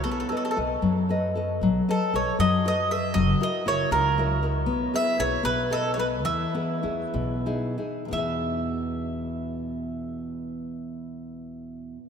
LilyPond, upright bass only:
\new Staff \with { instrumentName = "Upright bass" } { \clef bass \time 6/8 \key e \major \tempo 4. = 76 b,,8 r8 b,,8 fis,4. | b,,8 r8 b,,8 fis,4. | fis,,8 r8 fis,,8 cis,4. | b,,8 r8 b,,8 b,,4. |
e,8 r8 e,8 b,,4. | e,2.~ | e,2. | }